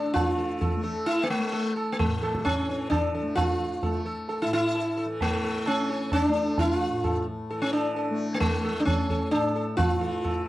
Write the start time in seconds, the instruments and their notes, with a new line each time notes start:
Already playing: tanpura A2 E3 A3, sitar D4 A4
0.14 tanpura E3, sitar F4, tabla tin, tabla ge
0.38 sitar A4
0.61 sitar A4, tabla tin, tabla ge
0.76 tanpura A3
0.84 sitar A4
1.06 sitar E4, tabla tin
1.23 sitar A#3
1.30 sitar A3
1.38 tanpura A3
1.53 sitar A4, tabla tin
1.76 sitar A4, tabla na
1.92 sitar A#3
1.99 tanpura A2, sitar A3, tabla tin, tabla ge
2.23 sitar A4, tabla na
2.35 tabla ke
2.45 sitar C#4, tabla na, tabla ge
2.62 tanpura E3
2.70 tabla te
2.90 sitar D4, tabla na, tabla ge
3.15 sitar A4, tabla te
3.22 tanpura A3
3.35 sitar F4, tabla tin, tabla ge
3.83 tanpura A3, sitar A4, tabla tin, tabla ge
4.06 sitar A4
4.29 sitar A4, tabla tin
4.42 tanpura A2, sitar E4
4.53 sitar E4
4.75 sitar A4, tabla tin
4.97 sitar A4
5.05 tanpura E3
5.21 sitar A3, tabla tin, tabla ge
5.44 sitar A4
5.66 tanpura A3, sitar C#4, tabla na
5.90 sitar A4
6.12 sitar C#4, tabla na, tabla ge
6.25 tanpura A3, sitar D4
6.35 sitar A4, tabla te
6.58 sitar E4, tabla tin, tabla ge
6.75 sitar F4
6.89 tanpura A2
7.04 sitar A4, tabla tin, tabla ge
7.50 tanpura E3, sitar A4, tabla tin
7.62 sitar C#4
7.73 sitar D4, tabla na
7.95 sitar A4, tabla tin
8.10 tanpura A3
8.34 sitar A#3
8.40 sitar A3, tabla tin, tabla ge
8.64 sitar A4, tabla na
8.71 tanpura A3
8.80 sitar D4
8.85 sitar C#4, tabla na, tabla ge
9.10 sitar A4, tabla ge
9.31 tanpura A2, sitar D4, tabla na
9.56 sitar A4
9.77 sitar F4, tabla tin, tabla ge
9.93 tanpura E3
10.01 sitar A4
10.24 sitar A4, tabla tin, tabla ge